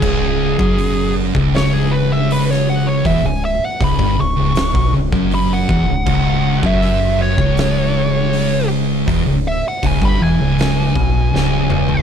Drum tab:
CC |x---------------|----------------|x---------------|----------------|
HH |----o---o---o---|o---o---o---o---|----o---o---o---|o---o---o-------|
SD |--------o----o--|--------o-------|--------o-------|--------o---o---|
T2 |----------------|----------------|----------------|--------------o-|
FT |----------------|----------------|----------------|---------------o|
BD |o--o---o--------|o---oo---o-o--o-|o--o---o--------|o---oo----o-----|